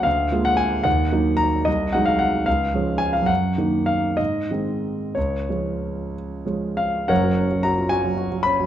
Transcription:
X:1
M:6/8
L:1/16
Q:3/8=73
K:Db
V:1 name="Grand piano"
f3 g a2 g4 b2 | e2 g f g2 f4 a f | g4 f2 e6 | d6 z4 f2 |
[K:F#] [Acf]4 a2 g4 b2 |]
V:2 name="Grand piano" clef=bass
=D,,2 [A,B,F]4 E,,2 [G,B,E]4 | C,,2 [G,A,E]4 D,,2 [F,A,D]4 | G,,2 [E,B,E]4 A,,2 [E,A,C]4 | D,,2 [F,A,D]6 [F,A,D]4 |
[K:F#] [F,,,F,,] F, C F, F E F F, F F, C F, |]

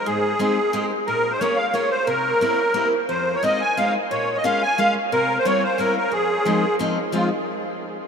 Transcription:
X:1
M:3/4
L:1/16
Q:1/4=179
K:Fm
V:1 name="Accordion"
A8- A2 z2 | B3 c d2 f2 d2 c2 | B8- B2 z2 | c3 d e2 a2 f2 z2 |
d3 e f2 a2 f2 z2 | B3 c d2 c2 B2 B2 | A8 z4 | F2 z8 z2 |]
V:2 name="Steel-string acoustic guitar"
A,,4 [A,CEG]2 z2 [A,CEG]2 z2 | B,,4 [B,DFA]2 z2 [B,DFA]2 z2 | C,4 [B,C=EG]2 z2 [B,CEG]2 z2 | F,,4 [A,CEF]2 z2 [A,CEF]2 z2 |
B,,4 [A,B,DF]2 z2 [A,B,DF]2 z2 | C,4 [G,B,C=E]2 z2 [G,B,CE]2 z2 | F,,4 [F,A,CE]2 z2 [F,A,CE]2 z2 | [F,A,CE]2 z8 z2 |]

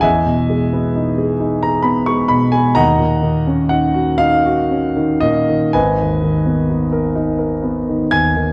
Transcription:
X:1
M:6/8
L:1/16
Q:3/8=43
K:G#m
V:1 name="Grand piano"
[deg]6- [deg] a b c' b g | [dfa]4 f2 ^e4 d2 | [Bdg]6 z4 [gg']2 |]
V:2 name="Grand piano"
E,, B,, G, B, D G D G B, G, B,, G, | D,, A,, D, C D F D F C D, A,, D, | G,,, D,, D, B, D A D A B, D, D,, D, |]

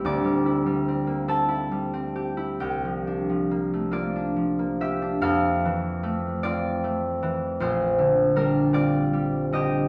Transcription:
X:1
M:6/8
L:1/16
Q:3/8=49
K:F
V:1 name="Harp"
[cdec'd'e']6 [Aa]6 | [Gg]6 [Fd]4 [Ge]2 | [Af]6 [Fd]6 | [Fc]4 [DB]2 [Fd]4 [G_e]2 |]
V:2 name="Harp"
[D,,G,CEG] G, E G, C B, C E G, C G E | C,, F, D F, B, A, B, D F, B, F D | F,,2 E,2 A,2 C2 A,2 E,2 | B,,,2 D,2 G,2 C2 G,2 D,2 |]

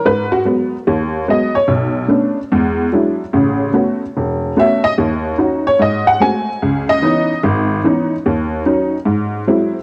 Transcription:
X:1
M:4/4
L:1/8
Q:"Swing" 1/4=146
K:G#phr
V:1 name="Honky-tonk piano"
B F z4 d c | z8 | z6 e d | z3 c d f g2- |
g d3 z4 | z8 |]
V:2 name="Honky-tonk piano"
G,,2 [F,G,B,] z D,,2 [F,G,B,] z | B,,,2 [A,B,C=D] z [E,,G,]2 [F,G,DE] z | [A,,,C,]2 [A,B,CF] z E,,,2 [A,B,CF] z | D,,2 [CDF] z G,,2 [G,A,^B,F] z |
C,,2 [E,B,CD] z G,,,2 [E,B,CD] z | D,,2 [F,CD] z G,,2 [F,G,^B,E] z |]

